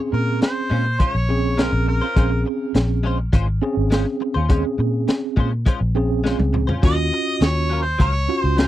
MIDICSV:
0, 0, Header, 1, 8, 480
1, 0, Start_track
1, 0, Key_signature, -5, "minor"
1, 0, Tempo, 583090
1, 1781, Time_signature, 4, 2, 24, 8
1, 7142, End_track
2, 0, Start_track
2, 0, Title_t, "Harmonica"
2, 0, Program_c, 0, 22
2, 107, Note_on_c, 0, 70, 78
2, 329, Note_off_c, 0, 70, 0
2, 345, Note_on_c, 0, 72, 87
2, 825, Note_on_c, 0, 73, 94
2, 838, Note_off_c, 0, 72, 0
2, 1315, Note_on_c, 0, 70, 80
2, 1328, Note_off_c, 0, 73, 0
2, 1541, Note_off_c, 0, 70, 0
2, 1546, Note_on_c, 0, 70, 86
2, 1990, Note_off_c, 0, 70, 0
2, 5637, Note_on_c, 0, 75, 115
2, 6120, Note_on_c, 0, 73, 100
2, 6133, Note_off_c, 0, 75, 0
2, 6429, Note_off_c, 0, 73, 0
2, 6434, Note_on_c, 0, 72, 89
2, 6578, Note_off_c, 0, 72, 0
2, 6595, Note_on_c, 0, 73, 102
2, 6916, Note_off_c, 0, 73, 0
2, 6916, Note_on_c, 0, 72, 102
2, 7070, Note_off_c, 0, 72, 0
2, 7070, Note_on_c, 0, 72, 91
2, 7142, Note_off_c, 0, 72, 0
2, 7142, End_track
3, 0, Start_track
3, 0, Title_t, "Clean electric guitar"
3, 0, Program_c, 1, 27
3, 576, Note_on_c, 1, 56, 58
3, 586, Note_on_c, 1, 61, 56
3, 595, Note_on_c, 1, 65, 60
3, 603, Note_on_c, 1, 72, 69
3, 691, Note_off_c, 1, 72, 0
3, 699, Note_off_c, 1, 65, 0
3, 701, Note_off_c, 1, 56, 0
3, 706, Note_off_c, 1, 61, 0
3, 819, Note_on_c, 1, 56, 69
3, 827, Note_on_c, 1, 61, 77
3, 832, Note_on_c, 1, 65, 78
3, 839, Note_on_c, 1, 72, 71
3, 931, Note_off_c, 1, 72, 0
3, 939, Note_off_c, 1, 65, 0
3, 942, Note_off_c, 1, 56, 0
3, 946, Note_off_c, 1, 61, 0
3, 1296, Note_on_c, 1, 56, 53
3, 1307, Note_on_c, 1, 61, 64
3, 1315, Note_on_c, 1, 65, 62
3, 1323, Note_on_c, 1, 72, 55
3, 1410, Note_off_c, 1, 72, 0
3, 1418, Note_off_c, 1, 65, 0
3, 1420, Note_off_c, 1, 56, 0
3, 1425, Note_off_c, 1, 61, 0
3, 1659, Note_on_c, 1, 72, 48
3, 1673, Note_on_c, 1, 65, 47
3, 1687, Note_on_c, 1, 61, 42
3, 1778, Note_off_c, 1, 61, 0
3, 1778, Note_on_c, 1, 56, 73
3, 1779, Note_off_c, 1, 72, 0
3, 1783, Note_off_c, 1, 65, 0
3, 1788, Note_on_c, 1, 61, 78
3, 1793, Note_on_c, 1, 65, 92
3, 1799, Note_on_c, 1, 72, 93
3, 1893, Note_off_c, 1, 72, 0
3, 1901, Note_off_c, 1, 56, 0
3, 1901, Note_off_c, 1, 65, 0
3, 1906, Note_off_c, 1, 61, 0
3, 2498, Note_on_c, 1, 56, 66
3, 2509, Note_on_c, 1, 61, 69
3, 2519, Note_on_c, 1, 65, 78
3, 2526, Note_on_c, 1, 72, 77
3, 2614, Note_off_c, 1, 72, 0
3, 2621, Note_off_c, 1, 56, 0
3, 2621, Note_off_c, 1, 65, 0
3, 2626, Note_off_c, 1, 61, 0
3, 2738, Note_on_c, 1, 56, 81
3, 2745, Note_on_c, 1, 61, 80
3, 2752, Note_on_c, 1, 65, 93
3, 2758, Note_on_c, 1, 72, 90
3, 2851, Note_off_c, 1, 72, 0
3, 2860, Note_off_c, 1, 56, 0
3, 2860, Note_off_c, 1, 65, 0
3, 2864, Note_off_c, 1, 61, 0
3, 3216, Note_on_c, 1, 56, 67
3, 3226, Note_on_c, 1, 61, 63
3, 3236, Note_on_c, 1, 65, 58
3, 3243, Note_on_c, 1, 72, 64
3, 3330, Note_off_c, 1, 72, 0
3, 3339, Note_off_c, 1, 56, 0
3, 3339, Note_off_c, 1, 65, 0
3, 3344, Note_off_c, 1, 61, 0
3, 3576, Note_on_c, 1, 72, 63
3, 3593, Note_on_c, 1, 65, 53
3, 3604, Note_on_c, 1, 61, 48
3, 3693, Note_off_c, 1, 61, 0
3, 3695, Note_on_c, 1, 56, 85
3, 3697, Note_off_c, 1, 72, 0
3, 3698, Note_off_c, 1, 65, 0
3, 3703, Note_on_c, 1, 61, 86
3, 3708, Note_on_c, 1, 65, 82
3, 3715, Note_on_c, 1, 72, 92
3, 3812, Note_off_c, 1, 72, 0
3, 3819, Note_off_c, 1, 56, 0
3, 3819, Note_off_c, 1, 65, 0
3, 3822, Note_off_c, 1, 61, 0
3, 4417, Note_on_c, 1, 56, 71
3, 4427, Note_on_c, 1, 61, 70
3, 4435, Note_on_c, 1, 65, 65
3, 4445, Note_on_c, 1, 72, 72
3, 4532, Note_off_c, 1, 72, 0
3, 4540, Note_off_c, 1, 56, 0
3, 4541, Note_off_c, 1, 65, 0
3, 4544, Note_off_c, 1, 61, 0
3, 4657, Note_on_c, 1, 56, 76
3, 4664, Note_on_c, 1, 61, 78
3, 4671, Note_on_c, 1, 65, 84
3, 4677, Note_on_c, 1, 72, 93
3, 4767, Note_off_c, 1, 72, 0
3, 4776, Note_off_c, 1, 65, 0
3, 4780, Note_off_c, 1, 56, 0
3, 4783, Note_off_c, 1, 61, 0
3, 5136, Note_on_c, 1, 56, 67
3, 5147, Note_on_c, 1, 61, 59
3, 5156, Note_on_c, 1, 65, 67
3, 5165, Note_on_c, 1, 72, 67
3, 5251, Note_off_c, 1, 72, 0
3, 5259, Note_off_c, 1, 56, 0
3, 5260, Note_off_c, 1, 65, 0
3, 5265, Note_off_c, 1, 61, 0
3, 5493, Note_on_c, 1, 72, 46
3, 5509, Note_on_c, 1, 65, 48
3, 5520, Note_on_c, 1, 61, 41
3, 5615, Note_off_c, 1, 61, 0
3, 5617, Note_off_c, 1, 72, 0
3, 5618, Note_on_c, 1, 54, 71
3, 5621, Note_off_c, 1, 65, 0
3, 5625, Note_on_c, 1, 61, 84
3, 5631, Note_on_c, 1, 65, 74
3, 5637, Note_on_c, 1, 70, 70
3, 5733, Note_off_c, 1, 70, 0
3, 5739, Note_off_c, 1, 65, 0
3, 5741, Note_off_c, 1, 54, 0
3, 5744, Note_off_c, 1, 61, 0
3, 6335, Note_on_c, 1, 54, 51
3, 6347, Note_on_c, 1, 61, 51
3, 6356, Note_on_c, 1, 65, 70
3, 6364, Note_on_c, 1, 70, 64
3, 6449, Note_off_c, 1, 70, 0
3, 6458, Note_off_c, 1, 65, 0
3, 6460, Note_off_c, 1, 54, 0
3, 6463, Note_off_c, 1, 61, 0
3, 6574, Note_on_c, 1, 54, 76
3, 6583, Note_on_c, 1, 61, 70
3, 6589, Note_on_c, 1, 65, 79
3, 6595, Note_on_c, 1, 70, 81
3, 6689, Note_off_c, 1, 70, 0
3, 6697, Note_off_c, 1, 65, 0
3, 6699, Note_off_c, 1, 54, 0
3, 6704, Note_off_c, 1, 61, 0
3, 7055, Note_on_c, 1, 54, 46
3, 7064, Note_on_c, 1, 61, 53
3, 7075, Note_on_c, 1, 65, 55
3, 7083, Note_on_c, 1, 70, 60
3, 7142, Note_off_c, 1, 54, 0
3, 7142, Note_off_c, 1, 61, 0
3, 7142, Note_off_c, 1, 65, 0
3, 7142, Note_off_c, 1, 70, 0
3, 7142, End_track
4, 0, Start_track
4, 0, Title_t, "Tine electric piano"
4, 0, Program_c, 2, 4
4, 0, Note_on_c, 2, 60, 66
4, 0, Note_on_c, 2, 61, 60
4, 0, Note_on_c, 2, 68, 76
4, 683, Note_off_c, 2, 60, 0
4, 685, Note_off_c, 2, 61, 0
4, 687, Note_off_c, 2, 68, 0
4, 1062, Note_on_c, 2, 60, 76
4, 1065, Note_on_c, 2, 61, 64
4, 1071, Note_on_c, 2, 68, 81
4, 1679, Note_off_c, 2, 60, 0
4, 1680, Note_off_c, 2, 61, 0
4, 1683, Note_off_c, 2, 68, 0
4, 1778, Note_on_c, 2, 60, 67
4, 1784, Note_on_c, 2, 61, 64
4, 1790, Note_on_c, 2, 68, 77
4, 2601, Note_off_c, 2, 60, 0
4, 2605, Note_off_c, 2, 61, 0
4, 2608, Note_off_c, 2, 68, 0
4, 2977, Note_on_c, 2, 60, 88
4, 2980, Note_on_c, 2, 61, 85
4, 2986, Note_on_c, 2, 68, 91
4, 3595, Note_off_c, 2, 60, 0
4, 3597, Note_off_c, 2, 61, 0
4, 3600, Note_off_c, 2, 68, 0
4, 3697, Note_on_c, 2, 60, 71
4, 3702, Note_on_c, 2, 61, 73
4, 3705, Note_on_c, 2, 68, 88
4, 4522, Note_off_c, 2, 60, 0
4, 4524, Note_off_c, 2, 61, 0
4, 4525, Note_off_c, 2, 68, 0
4, 4899, Note_on_c, 2, 60, 89
4, 4900, Note_on_c, 2, 61, 73
4, 4908, Note_on_c, 2, 68, 92
4, 5518, Note_off_c, 2, 60, 0
4, 5518, Note_off_c, 2, 61, 0
4, 5522, Note_off_c, 2, 68, 0
4, 5619, Note_on_c, 2, 61, 70
4, 5625, Note_on_c, 2, 65, 67
4, 5629, Note_on_c, 2, 66, 78
4, 6444, Note_off_c, 2, 61, 0
4, 6447, Note_off_c, 2, 65, 0
4, 6449, Note_off_c, 2, 66, 0
4, 6819, Note_on_c, 2, 61, 66
4, 6822, Note_on_c, 2, 65, 63
4, 6828, Note_on_c, 2, 66, 79
4, 7142, Note_off_c, 2, 61, 0
4, 7142, Note_off_c, 2, 65, 0
4, 7142, Note_off_c, 2, 66, 0
4, 7142, End_track
5, 0, Start_track
5, 0, Title_t, "Fingered electric bass"
5, 0, Program_c, 3, 33
5, 105, Note_on_c, 3, 46, 83
5, 328, Note_off_c, 3, 46, 0
5, 585, Note_on_c, 3, 46, 90
5, 807, Note_off_c, 3, 46, 0
5, 944, Note_on_c, 3, 34, 80
5, 1390, Note_off_c, 3, 34, 0
5, 1421, Note_on_c, 3, 34, 91
5, 1645, Note_off_c, 3, 34, 0
5, 1781, Note_on_c, 3, 34, 88
5, 2004, Note_off_c, 3, 34, 0
5, 2262, Note_on_c, 3, 34, 88
5, 2708, Note_off_c, 3, 34, 0
5, 2740, Note_on_c, 3, 32, 91
5, 2963, Note_off_c, 3, 32, 0
5, 3103, Note_on_c, 3, 32, 79
5, 3325, Note_off_c, 3, 32, 0
5, 3587, Note_on_c, 3, 39, 76
5, 3807, Note_off_c, 3, 39, 0
5, 3940, Note_on_c, 3, 46, 77
5, 4163, Note_off_c, 3, 46, 0
5, 4422, Note_on_c, 3, 46, 95
5, 4644, Note_off_c, 3, 46, 0
5, 4781, Note_on_c, 3, 34, 84
5, 5229, Note_off_c, 3, 34, 0
5, 5261, Note_on_c, 3, 37, 84
5, 5485, Note_off_c, 3, 37, 0
5, 5624, Note_on_c, 3, 39, 81
5, 5846, Note_off_c, 3, 39, 0
5, 6099, Note_on_c, 3, 39, 84
5, 6548, Note_off_c, 3, 39, 0
5, 6583, Note_on_c, 3, 37, 74
5, 6806, Note_off_c, 3, 37, 0
5, 6946, Note_on_c, 3, 37, 76
5, 7142, Note_off_c, 3, 37, 0
5, 7142, End_track
6, 0, Start_track
6, 0, Title_t, "Muted clean electric guitar strokes"
6, 102, Note_on_c, 9, 29, 34
6, 184, Note_off_c, 9, 29, 0
6, 341, Note_on_c, 9, 29, 35
6, 423, Note_off_c, 9, 29, 0
6, 701, Note_on_c, 9, 29, 47
6, 784, Note_off_c, 9, 29, 0
6, 941, Note_on_c, 9, 29, 36
6, 1023, Note_off_c, 9, 29, 0
6, 1059, Note_on_c, 9, 29, 38
6, 1141, Note_off_c, 9, 29, 0
6, 1420, Note_on_c, 9, 29, 36
6, 1502, Note_off_c, 9, 29, 0
6, 1540, Note_on_c, 9, 29, 33
6, 1623, Note_off_c, 9, 29, 0
6, 1903, Note_on_c, 9, 29, 37
6, 1985, Note_off_c, 9, 29, 0
6, 2022, Note_on_c, 9, 29, 32
6, 2104, Note_off_c, 9, 29, 0
6, 2261, Note_on_c, 9, 29, 46
6, 2343, Note_off_c, 9, 29, 0
6, 2624, Note_on_c, 9, 29, 52
6, 2706, Note_off_c, 9, 29, 0
6, 2861, Note_on_c, 9, 29, 46
6, 2944, Note_off_c, 9, 29, 0
6, 2978, Note_on_c, 9, 29, 43
6, 3060, Note_off_c, 9, 29, 0
6, 3340, Note_on_c, 9, 29, 44
6, 3422, Note_off_c, 9, 29, 0
6, 3462, Note_on_c, 9, 29, 44
6, 3545, Note_off_c, 9, 29, 0
6, 3822, Note_on_c, 9, 29, 42
6, 3904, Note_off_c, 9, 29, 0
6, 3939, Note_on_c, 9, 29, 34
6, 4021, Note_off_c, 9, 29, 0
6, 4181, Note_on_c, 9, 29, 44
6, 4263, Note_off_c, 9, 29, 0
6, 4542, Note_on_c, 9, 29, 52
6, 4624, Note_off_c, 9, 29, 0
6, 4777, Note_on_c, 9, 29, 42
6, 4860, Note_off_c, 9, 29, 0
6, 4900, Note_on_c, 9, 29, 50
6, 4982, Note_off_c, 9, 29, 0
6, 5261, Note_on_c, 9, 29, 39
6, 5344, Note_off_c, 9, 29, 0
6, 5378, Note_on_c, 9, 29, 40
6, 5460, Note_off_c, 9, 29, 0
6, 5743, Note_on_c, 9, 29, 38
6, 5825, Note_off_c, 9, 29, 0
6, 5863, Note_on_c, 9, 29, 30
6, 5945, Note_off_c, 9, 29, 0
6, 6100, Note_on_c, 9, 29, 38
6, 6182, Note_off_c, 9, 29, 0
6, 6459, Note_on_c, 9, 29, 45
6, 6541, Note_off_c, 9, 29, 0
6, 6699, Note_on_c, 9, 29, 40
6, 6782, Note_off_c, 9, 29, 0
6, 6820, Note_on_c, 9, 29, 39
6, 6902, Note_off_c, 9, 29, 0
6, 7142, End_track
7, 0, Start_track
7, 0, Title_t, "Muted fingered electric bass strokes"
7, 4662, Note_on_c, 9, 29, 33
7, 4744, Note_off_c, 9, 29, 0
7, 7142, End_track
8, 0, Start_track
8, 0, Title_t, "Drums"
8, 344, Note_on_c, 9, 42, 51
8, 349, Note_on_c, 9, 38, 97
8, 426, Note_off_c, 9, 42, 0
8, 432, Note_off_c, 9, 38, 0
8, 822, Note_on_c, 9, 36, 90
8, 822, Note_on_c, 9, 42, 50
8, 904, Note_off_c, 9, 42, 0
8, 905, Note_off_c, 9, 36, 0
8, 1303, Note_on_c, 9, 42, 55
8, 1309, Note_on_c, 9, 38, 103
8, 1386, Note_off_c, 9, 42, 0
8, 1391, Note_off_c, 9, 38, 0
8, 1782, Note_on_c, 9, 36, 112
8, 1784, Note_on_c, 9, 42, 57
8, 1865, Note_off_c, 9, 36, 0
8, 1866, Note_off_c, 9, 42, 0
8, 2262, Note_on_c, 9, 42, 52
8, 2268, Note_on_c, 9, 38, 91
8, 2345, Note_off_c, 9, 42, 0
8, 2351, Note_off_c, 9, 38, 0
8, 2741, Note_on_c, 9, 36, 103
8, 2742, Note_on_c, 9, 42, 55
8, 2824, Note_off_c, 9, 36, 0
8, 2824, Note_off_c, 9, 42, 0
8, 3223, Note_on_c, 9, 42, 61
8, 3229, Note_on_c, 9, 38, 99
8, 3305, Note_off_c, 9, 42, 0
8, 3311, Note_off_c, 9, 38, 0
8, 3702, Note_on_c, 9, 36, 113
8, 3702, Note_on_c, 9, 42, 63
8, 3784, Note_off_c, 9, 36, 0
8, 3784, Note_off_c, 9, 42, 0
8, 4182, Note_on_c, 9, 42, 49
8, 4188, Note_on_c, 9, 38, 95
8, 4264, Note_off_c, 9, 42, 0
8, 4270, Note_off_c, 9, 38, 0
8, 4422, Note_on_c, 9, 36, 74
8, 4504, Note_off_c, 9, 36, 0
8, 4662, Note_on_c, 9, 36, 94
8, 4662, Note_on_c, 9, 42, 56
8, 4744, Note_off_c, 9, 42, 0
8, 4745, Note_off_c, 9, 36, 0
8, 5148, Note_on_c, 9, 38, 59
8, 5230, Note_off_c, 9, 38, 0
8, 5264, Note_on_c, 9, 48, 58
8, 5346, Note_off_c, 9, 48, 0
8, 5383, Note_on_c, 9, 45, 77
8, 5465, Note_off_c, 9, 45, 0
8, 5505, Note_on_c, 9, 43, 81
8, 5587, Note_off_c, 9, 43, 0
8, 5623, Note_on_c, 9, 36, 120
8, 5624, Note_on_c, 9, 42, 59
8, 5705, Note_off_c, 9, 36, 0
8, 5707, Note_off_c, 9, 42, 0
8, 6103, Note_on_c, 9, 42, 54
8, 6109, Note_on_c, 9, 38, 99
8, 6186, Note_off_c, 9, 42, 0
8, 6192, Note_off_c, 9, 38, 0
8, 6584, Note_on_c, 9, 36, 84
8, 6585, Note_on_c, 9, 42, 59
8, 6666, Note_off_c, 9, 36, 0
8, 6667, Note_off_c, 9, 42, 0
8, 7063, Note_on_c, 9, 42, 61
8, 7069, Note_on_c, 9, 38, 94
8, 7142, Note_off_c, 9, 38, 0
8, 7142, Note_off_c, 9, 42, 0
8, 7142, End_track
0, 0, End_of_file